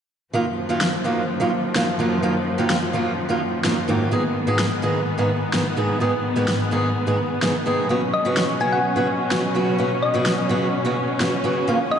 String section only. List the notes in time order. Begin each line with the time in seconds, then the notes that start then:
0.34 F#2 D#3 F3
4.12 G#2 B3
7.90 B2 F#3 C#4
11.68 A#2 F3